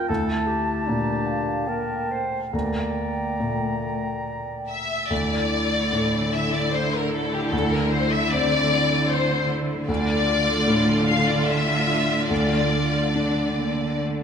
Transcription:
Already playing: C4 F4
0.09 D2 E4 A4 A5
0.47 G4
0.86 A#2 D4 A#5
1.27 F5
1.67 A#3 A#4 G5
2.11 C5
2.53 D2 A#3 D5 G5 A#5
3.40 A#2 A3
4.69 E5
5.10 D2 D3 A3 E4 D5
5.93 A2
6.35 E5
6.56 D5
6.75 C5
6.95 A#4
7.15 A4
7.35 G4
7.52 D2 A4
7.73 A#4
7.91 C5
8.12 E5
8.32 C4 D5
9.10 C5
9.88 D2 D3 A3 F4 D5
10.67 A2
11.07 F5
11.26 D5
11.46 E5
12.30 D2 D5
13.15 D4
13.59 A#3
14.01 A3

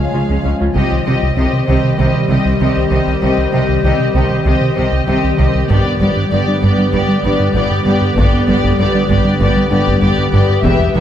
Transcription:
Already playing: F3 G#3 F4 G#4 C#5 F5
0.14 C#2 C#3 G#3 C#4 F4
0.29 C#2 C#3 G#3 C#4
0.45 C#2 C#4
0.60 C#2 F3 C#4 F4
0.74 C2 C3 D#3 G3 C4 G4 C5 D#5, taiko
0.91 C2 D#3
1.05 C2 C3 C4 G4 D#5
1.22 C2 C3
1.37 C2 C3 C4 G4 D#5
1.53 C3 G3
1.67 C2 C3 C4 G4 D#5
1.83 C3 G3
1.98 C2 C3 C4 G4 D#5
2.14 C3
2.29 C2 C3 G3 C4 G4 D#5
2.45 C2 C3
2.60 C2 C3 C4 G4 D#5
2.76 C2 C4
2.90 C2 C3 C4 G4 D#5
3.07 C2
3.21 C2 C3 C4 G4 D#5
3.37 C2 D#3
3.52 C2 C3 C4 G4 D#5
3.68 C2 C3
3.84 C2 C3 C4 G4 D#5
3.98 C3 G3
4.13 C2 C3 C4 G4 D#5
4.29 C3 G3
4.45 C2 C3 C4 G4 D#5
4.62 C3
4.76 C2 C3 G3 C4 G4 D#5
4.92 C2 C3
5.07 C2 C3 C4 G4 D#5
5.23 C2 C4
5.38 C2 C3 C4 G4 D#5
5.55 C2
5.69 G1 G2 D3 G3 B3 G4 B4 D5, taiko
5.85 G2 B3
6.00 G1 G2 G3 B3 G4 D5
6.16 G2 G3
6.32 G1 G2 B3 G4 D5
6.48 G3 D4
6.62 G1 G2 G3 B3 G4 D5, taiko
6.78 G3 D4
6.93 G1 G2 G3 B3 G4 D5
7.09 G3
7.24 G1 G2 G3 B3 D4 G4 D5
7.40 G2 G3
7.55 G1 G2 B3 G4 D5
7.71 G2 G4
7.86 G1 G2 G3 B3 G4 D5
8.02 G2
8.16 G1 G2 G3 B3 G4 D5, taiko
8.33 G2 B3
8.48 G1 G2 G3 B3 G4 D5
8.63 G2 G3, taiko
8.78 G1 G2 B3 G4 D5
8.95 G3 D4
9.09 G1 G2 G3 B3 G4 D5, taiko
9.25 G3 D4
9.40 G1 G2 G3 B3 G4 D5, taiko
9.57 G3
9.71 G1 G2 G3 B3 D4 G4 D5
9.87 G2 G3, taiko
10.02 G1 G2 B3 G4 D5
10.19 G2
10.32 G1 G2 G3 B3 G4 D5
10.49 G2
10.64 E1 E2 E3 G3 B3 G4 B4 E5, taiko
10.80 E2 G3
10.94 E1 E2 E3 B3 G4 E5

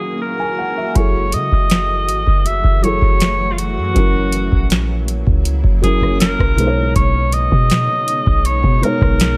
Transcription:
Already playing: E3 F#3 G#3 A#3 E4 F#4 G#4 A#4
0.22 A#4
0.40 G#5
0.58 F#5
0.77 E5
0.95 F#1 E3 F#3 A3 E4 F#4 G#4 A4 C#5, kick, closed hi-hat
1.32 C#3 D#5, closed hi-hat
1.52 F#1, kick
1.70 snare, closed hi-hat
2.08 G#1, closed hi-hat
2.27 F#1, kick
2.46 E5, closed hi-hat
2.64 F#1, kick
2.82 F#3 E4 G#4 A4 C#5, closed hi-hat
3.02 F#1, kick
3.20 snare, closed hi-hat
3.52 F4
3.58 F#4, closed hi-hat
3.77 F#2
3.94 F#1 C#3 F#3 A#3 C#4 E4 A#4, kick, closed hi-hat
4.32 closed hi-hat
4.52 A#1, kick
4.70 snare, closed hi-hat
5.08 closed hi-hat
5.27 C#2, kick
5.45 closed hi-hat
5.64 F#1, kick
5.82 F#3 C#4 E4 G#4 A#4, kick, closed hi-hat
6.02 kick, cross-stick
6.20 A#4, snare, closed hi-hat
6.39 B1, kick, cross-stick
6.56 B2 G#3 B3 D#4 C5, closed hi-hat
6.67 C#5
6.95 B1 C#5, kick, closed hi-hat
7.32 D#5, closed hi-hat
7.52 B2, kick
7.70 snare, closed hi-hat
8.08 closed hi-hat
8.26 B1, kick
8.45 C#5, closed hi-hat
8.63 B2, kick
8.81 B2 G#3 D#4 A#4 C#5, closed hi-hat
9.01 B1, kick, cross-stick
9.20 snare, closed hi-hat

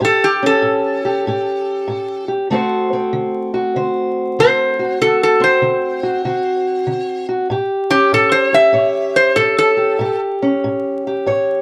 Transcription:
0.01 A2 G4
0.05 A4
0.24 G4
0.43 C#4 A4
0.62 A2
1.05 G4
1.27 A2 G4
1.88 A2
2.28 G4
2.50 D3 A3 C4 F#4 C5
2.93 C4
3.13 D3
3.54 F#4
3.76 D3 C5
4.39 D3 C5
4.79 F#4
5.01 D3 F#4 A4
5.23 A4
5.40 C4 C5
5.62 D3
6.03 F#4
6.25 D3 F#4
6.87 D3
7.29 F#4
7.50 A2 G4
7.90 C#4 G4
8.12 A2 A4
8.32 C5
8.53 G4 E5
8.73 A2 C#5
9.16 C5
9.36 A2 A4
9.58 A4
9.77 G4
9.99 A2 G4
10.42 C#4
10.64 A2
11.07 G4
11.26 A2 C#5

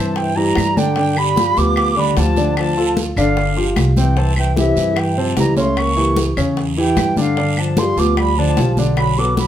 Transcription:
Already playing: G2 C3 E3 C4 C5 A5
0.16 E3 G5, high bongo, high conga, long guiro
0.36 E3 G3 E4 G4 A#5, high bongo, high conga
0.55 G2, high bongo, low bongo, high conga, short guiro, claves
0.76 D3 D4 D5 G5, high conga, short guiro
0.96 D3 D4 D5, high bongo, high conga, long guiro
1.17 G3 B5, high conga, claves
1.36 F3 F4 G4, high bongo, high conga, short guiro
1.57 D2 F3 B3 F4 G4 D6, high bongo, high conga, short guiro
1.76 high bongo, high conga, long guiro, claves
1.97 D3 G3 D4 D5 B5, high bongo, high conga
2.17 D2 F3 F4 G4 A5, high bongo, low bongo, high conga, short guiro
2.37 D3 D4 D5, high bongo, high conga, short guiro
2.57 F3 A5, high bongo, high conga, long guiro, claves
2.77 F3 F4 A4, high conga
2.97 high bongo, high conga, short guiro
3.16 G1 D3 D4 D5 F5, high bongo, high conga, short guiro, claves
3.37 high bongo, high conga, long guiro
3.57 F3 F4 G4, high bongo, high conga
3.76 C2, high bongo, low bongo, high conga, short guiro, claves
3.97 C3 E3 C4 C5 G5, high conga, short guiro
4.17 C3 E3 C4 C5 A5, high bongo, high conga, long guiro
4.36 E3 G5, high conga, claves
4.56 C3 E3 E4 G4 E5, high bongo, high conga, short guiro
4.76 G2 E3 E4 G4, high bongo, high conga, short guiro
4.96 E3 G5, high bongo, high conga, long guiro, claves
5.17 C3 F3 C4 C5 A5, high bongo, high conga
5.37 C#2 E3 G3 E4 G4 A#5, high bongo, low bongo, high conga, short guiro
5.56 C#3 A3 C#4 C#5 C6, high bongo, high conga, short guiro
5.77 A#3 C#6, high bongo, high conga, long guiro, claves
5.97 E3 E4 G4, high conga
6.16 high bongo, high conga, short guiro
6.37 E2 C#3 C#4 C#5, high bongo, high conga, short guiro, claves
6.57 high bongo, high conga, long guiro
6.77 E3 E4 G4 G5, high bongo, high conga
6.97 G2, high bongo, low bongo, high conga, short guiro, claves
7.17 D3 D4 D5 F5, high conga, short guiro
7.37 D3 D4 D5, high bongo, high conga, long guiro
7.57 F3 A5, high conga, claves
7.77 F3 G3 F4 G4 C6, high bongo, high conga, short guiro
7.97 D2 F3 B3 F4 G4 D6, high bongo, high conga, short guiro
8.17 G3 B5, high bongo, high conga, long guiro, claves
8.37 D3 F3 D4 D5 A5, high bongo, high conga
8.57 B1 F3 F4 G4, high bongo, low bongo, high conga, short guiro
8.77 D3 D4 D5, high bongo, high conga, short guiro
8.97 F#3 B5, high bongo, high conga, long guiro, claves
9.17 F#3 B3 F#4 A4 D6, high conga
9.37 F#3 B5, high bongo, high conga, short guiro

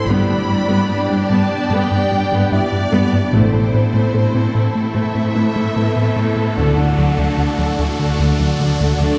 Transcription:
Already playing: D4 D5
0.08 G1 G2 G3 B3 D4 G4 D5 B5
0.28 G2 B3 G4
0.49 G2 G3 B3
0.69 G2 G3 B3
0.89 G2 B3 G4
1.09 G2 G3 B3
1.29 G2 G3 B3 A5
1.50 G3
1.70 G2 G3 B3 G5
1.91 G2 B3
2.11 G2 G3 D4
2.32 G2 G3 B3
2.51 G2 B3 E4 D5 E5
2.72 G2 G3 G4
2.92 G2 G3 B3
3.12 G2 B3 G4
3.31 A1 A2 A3 C4 E4 A4 C5 E5, riser
3.52 A2 A3 A4
3.72 A2 E3 C4
3.93 A2 A3
4.13 A2 A3 A4
4.33 A2 E3 C4
4.54 A2 A3
4.75 A3
4.93 A2 A3 E5
5.14 A2 A3 C4
5.34 A2 E3 A3 E4
5.54 A2 A3
5.76 A2 A3 B3 C4 B4
5.95 A2 E3 A4
6.16 A2 A3
6.36 A2 A3 A4
6.57 D2 D3 A3 D4 F#4 D5 F#5
6.77 D2 D3 A3 D4
6.97 D2 D3 F#3
7.17 D2 D3 A3
7.37 D2 D3 A3 D4
7.58 D2 D3 F#3
7.78 D2 D3 A3
7.99 D3
8.19 D2 D3 A3
8.39 D2 D3 F#3 A3
8.60 D3 F#3 A3
8.79 D2 D3 A3
9.00 D2 D3 F#3 A3 D4 D5

